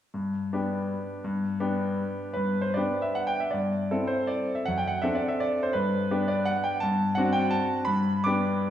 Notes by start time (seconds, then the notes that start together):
0.14 G2
0.53 B3 D4 G4
1.24 G2
1.60 B3 D4 G4
2.34 G2 B4
2.61 C5
2.74 B3 D4 G4 D5
3.02 E5
3.15 F#5
3.27 G5
3.40 E5
3.51 G2 D5
3.91 C4 E4 A4
4.07 C5
4.27 D5
4.55 E5
4.66 F#2 F#5
4.78 G5
4.87 F#5
5.02 C4 D4 A4 E5
5.15 D5
5.28 E5
5.40 D5
5.63 C5
5.73 G2 B4
6.11 B3 D4 G4
6.28 D5
6.45 F#5
6.64 G5
6.80 G2 A5
7.15 C4 D4 F#4 F#5
7.33 G5
7.50 A5
7.85 G2 B5
8.24 B3 D4 G4 D6